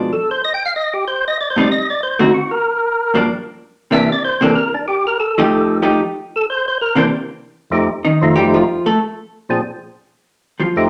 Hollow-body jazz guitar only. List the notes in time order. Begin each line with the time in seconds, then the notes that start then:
Already playing: D4
1.56 A2 G3 C4 D#4
2.19 D3 A3 C4 F#4
3.14 G2 F3 A#3 D4
3.91 C3 E3 A#3 D4
4.41 C3 E3 A#3 D4
5.38 F3 A3 D#4 G4
5.82 F3 A3 D#4 G4
6.95 C3 E3 A#3 D4
8.05 D#3 D#4
8.36 G3 G4
8.54 F3 F4
8.86 A3 A4
10.60 F3 F4